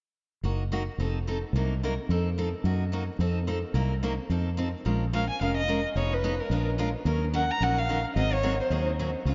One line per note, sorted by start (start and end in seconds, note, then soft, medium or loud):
0.43 0.88 F#1 medium
0.43 0.62 F#3 soft
0.43 0.62 A#3 medium
0.43 0.62 D#4 medium
0.43 0.63 F#4 medium
0.72 0.82 F#3 medium
0.72 0.82 A#3 medium
0.72 0.82 D#4 medium
0.72 0.82 F#4 medium
0.98 1.43 F1 medium
0.98 1.18 F3 medium
0.98 1.18 C4 medium
0.98 1.18 D#4 medium
0.98 1.18 A4 medium
1.27 1.37 F3 medium
1.27 1.37 C4 medium
1.27 1.38 D#4 medium
1.27 1.38 A4 medium
1.53 1.97 C2 medium
1.53 1.73 C3 medium
1.53 1.73 F#3 medium
1.53 1.73 A#3 medium
1.53 1.73 D#4 medium
1.53 1.74 A#4 medium
1.83 1.93 C3 medium
1.83 1.93 F#3 medium
1.83 1.93 A#3 medium
1.83 1.93 D#4 medium
1.83 1.93 A#4 medium
2.09 2.53 F2 medium
2.09 2.28 F3 medium
2.09 2.28 C4 medium
2.09 2.28 D#4 medium
2.09 2.29 A4 medium
2.38 2.47 F3 medium
2.38 2.48 C4 medium
2.38 2.48 D#4 medium
2.38 2.48 A4 medium
2.64 3.08 F#2 medium
2.64 2.83 F#3 medium
2.64 2.83 A#3 medium
2.64 2.83 D#4 medium
2.64 2.84 F#4 medium
2.92 3.02 F#3 medium
2.92 3.03 A#3 medium
2.92 3.03 D#4 medium
2.92 3.03 F#4 medium
3.19 3.63 F2 medium
3.19 3.38 F3 medium
3.19 3.38 C4 medium
3.19 3.39 D#4 medium
3.19 3.39 A4 medium
3.47 3.57 F3 medium
3.47 3.58 C4 medium
3.47 3.58 D#4 medium
3.47 3.58 A4 medium
3.74 4.18 C2 medium
3.74 3.93 C3 medium
3.74 3.93 F#3 medium
3.74 3.93 A#3 medium
3.74 3.93 D#4 medium
3.74 3.93 A#4 medium
4.03 4.13 C3 medium
4.03 4.13 F#3 medium
4.03 4.13 A#3 medium
4.03 4.13 D#4 medium
4.03 4.13 A#4 medium
4.29 4.74 F2 medium
4.29 4.48 F3 medium
4.29 4.49 C4 medium
4.29 4.49 D#4 medium
4.29 4.49 A4 medium
4.57 4.67 F3 medium
4.57 4.68 C4 medium
4.57 4.68 D#4 medium
4.57 4.68 A4 medium
4.85 5.29 A#1 medium
4.85 5.03 F3 medium
4.85 5.04 G#3 medium
4.85 5.04 C#4 medium
4.85 5.04 F4 medium
4.85 5.04 A#4 medium
5.13 5.23 F3 medium
5.13 5.23 G#3 medium
5.13 5.23 C#4 medium
5.13 5.24 F4 medium
5.13 5.24 A#4 medium
5.13 5.28 F5 medium
5.29 5.40 G#5 medium
5.41 5.85 F1 medium
5.41 5.59 F3 medium
5.41 5.59 G#3 medium
5.41 5.59 C#4 medium
5.41 5.59 F4 medium
5.41 5.59 A#4 medium
5.41 5.56 F5 medium
5.58 5.82 D#5 medium
5.68 5.78 F3 medium
5.68 5.78 G#3 medium
5.68 5.78 C#4 medium
5.68 5.78 F4 medium
5.68 5.79 A#4 medium
5.95 6.39 F1 medium
5.95 6.14 F3 medium
5.95 6.14 B3 medium
5.95 6.14 D#4 medium
5.95 6.14 G#4 medium
5.95 6.15 C#5 medium
6.13 6.42 B4 medium
6.24 6.33 F3 medium
6.24 6.34 B3 medium
6.24 6.34 D#4 medium
6.24 6.34 G#4 medium
6.40 6.67 A#4 medium
6.50 6.94 A#1 medium
6.50 6.69 F3 medium
6.50 6.69 G#3 medium
6.50 6.70 D4 medium
6.50 6.70 F4 medium
6.50 6.70 A#4 medium
6.78 6.88 F3 medium
6.78 6.88 G#3 medium
6.78 6.88 D4 medium
6.78 6.89 F4 medium
6.78 6.89 A#4 medium
7.05 7.49 D#2 medium
7.05 7.24 D#3 medium
7.05 7.24 F#3 medium
7.05 7.24 C#4 medium
7.05 7.24 D#4 medium
7.05 7.25 A#4 medium
7.34 7.44 D#3 medium
7.34 7.44 F#3 medium
7.34 7.44 C#4 medium
7.34 7.44 D#4 medium
7.34 7.44 A#4 medium
7.34 7.53 F#5 medium
7.51 7.65 A#5 loud
7.61 8.05 A#1 medium
7.61 7.80 D#3 medium
7.61 7.79 F#3 medium
7.61 7.80 C#4 medium
7.61 7.80 D#4 medium
7.61 7.80 A#4 medium
7.61 7.80 F#5 medium
7.78 8.05 F5 medium
7.89 7.99 D#3 medium
7.89 7.99 F#3 medium
7.89 7.99 C#4 medium
7.89 7.99 D#4 medium
7.89 7.99 A#4 medium
8.16 8.60 G#1 medium
8.16 8.35 D#3 medium
8.16 8.35 F#3 medium
8.16 8.35 C4 medium
8.16 8.35 D#4 medium
8.16 8.35 G#4 medium
8.16 8.35 D#5 medium
8.33 8.60 C#5 medium
8.43 8.53 D#3 medium
8.43 8.54 F#3 medium
8.43 8.54 C4 medium
8.43 8.54 D#4 medium
8.43 8.54 G#4 medium
8.60 8.85 C5 medium
8.70 9.14 D#2 medium
8.70 8.89 D#3 medium
8.70 8.90 F#3 medium
8.70 8.90 C4 medium
8.70 8.90 D#4 medium
8.70 8.90 G#4 medium
8.99 9.09 D#3 medium
8.99 9.09 F#3 medium
8.99 9.10 C4 medium
8.99 9.10 D#4 medium
8.99 9.09 G#4 medium
9.25 9.35 C#2 medium
9.25 9.35 C#3 medium
9.25 9.35 G#3 medium
9.25 9.35 C4 medium
9.25 9.35 F4 medium
9.25 9.35 G#4 medium